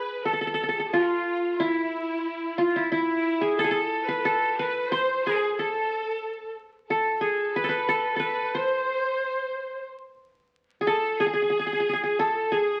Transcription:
Already playing: qanun G#4 B4, violin section B4
0.06 ney B4
0.23 ney A4, violin section A4, qanun A4
0.33 qanun A4
0.41 qanun A4
0.47 qanun A4
0.54 qanun A4
0.63 qanun A4
0.69 ney G#4, qanun A4
0.79 qanun A4
0.88 ney F4, violin section F4
0.93 qanun F4
1.40 ney F4
1.55 ney E4, violin section E4
1.60 qanun E4
2.16 ney F4
2.22 ney E4
2.57 violin section F4, qanun F4
2.72 ney E4, violin section E4
2.76 qanun E4
2.88 ney E4, violin section E4, qanun E4
3.39 ney G#4, qanun G#4
3.54 ney A4, violin section A4
3.59 qanun A4
3.64 qanun G#4
3.69 ney A4, qanun A4, violin section A4
4.03 ney B4, violin section B4
4.08 qanun B4
4.19 ney A4, violin section A4
4.25 qanun A4, ney B4
4.35 ney A4
4.55 ney B4, violin section B4
4.59 qanun B4
4.88 ney C5, violin section C5, qanun C5
5.23 violin section G#4, qanun G#4
5.46 ney B4
5.52 ney A4
5.57 violin section A4, qanun A4
6.89 ney A4, violin section A4, qanun A4
7.21 ney G#4, qanun G#4
7.54 ney B4, violin section B4, qanun B4
7.64 qanun A4, ney B4 C5
7.69 qanun B4
7.88 ney A4, qanun A4
8.16 qanun A4 B4
8.21 ney B4, violin section B4
8.54 ney C5, qanun C5, violin section C5
10.81 qanun G#4
10.87 violin section A4, qanun A4, ney A4
11.20 qanun G#4, violin section G#4, ney G#4
11.33 qanun G#4
11.42 qanun G#4
11.50 qanun G#4
11.59 qanun G#4
11.66 qanun G#4
11.73 qanun G#4
11.80 qanun G#4
11.87 ney G#4, qanun G#4
11.93 qanun G#4
12.03 qanun G#4
12.19 ney A4, qanun A4, violin section A4
12.52 qanun G#4, ney G#4, violin section G#4

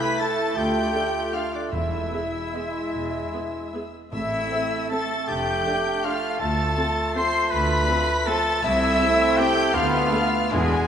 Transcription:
Already playing: french horn section A3 E4, bassoon A3, clarinet E4
0.00 trumpet B4, flute B5, violin section B5 B6
0.19 viola section E4 A4, trumpet A4, flute A5, violin section A5 A6
0.55 double bass section D2, cello section D2, clarinet F4, french horn section F4, trumpet G4, flute G5, violin section G5 G6
0.94 viola section D4 A4
1.33 viola section D4 A4, trumpet F4, flute F5, violin section F5 F6
1.53 trumpet D4, violin section D5 D6, flute D5
1.71 double bass section E1, timpani E2, cello section E2, french horn section G#3 E4, trumpet E4, clarinet E4, violin section E5 E6, flute E5
2.13 viola section B3 G#4
2.53 bassoon G#3, viola section B3 G#4
2.92 double bass section E1, cello section E2
3.33 viola section B3 G#4
3.73 viola section B3 G#4
4.11 double bass section A1, cello section A2, timpani A2, bassoon A3, clarinet C4, trumpet E4, violin section E5 E6, flute E5
4.51 french horn section A3 C4, viola section C4 A4
4.90 french horn section A3 C4, viola section C4 A4, trumpet A4, flute A5, violin section A5 A6
5.28 double bass section F1, cello section F2, clarinet D4, trumpet G4, violin section G5 G6, flute G5
5.66 french horn section A3 D4, viola section D4 A4
6.04 french horn section A3 D4, viola section D4 A4, trumpet F4, violin section F5 F6, flute F5
6.39 cello section D2, double bass section D2, bassoon A3, clarinet F4, trumpet A4, flute A5, violin section A5 A6
6.77 french horn section F3 C4, viola section C4 A4
7.15 french horn section F3 C4, viola section C4 A4, trumpet C5, violin section C6 C7, flute C6
7.51 double bass section D2, cello section D2, trumpet B4, violin section B5 B6, flute B5
7.89 french horn section F3 C4, viola section C4 A4
8.26 french horn section F3 C4, viola section C4 A4, trumpet A4, flute A5, violin section A5 A6
8.62 double bass section C2, cello section C2, french horn section A3 C4, bassoon A3, trumpet E4, clarinet E4, flute E5, violin section E5 E6
9.00 viola section C4 A4
9.37 viola section C4 A4, trumpet G4, flute G5, violin section G5 G6
9.74 double bass section D2, cello section D2, french horn section A3 B3, bassoon B3, clarinet D4, trumpet F4, violin section F5 F6, flute F5
10.12 viola section B3 A4
10.51 double bass section E1, cello section E2, trumpet G#3, french horn section B3 D4, viola section D4 E4, violin section G#4 G#5, flute G#4

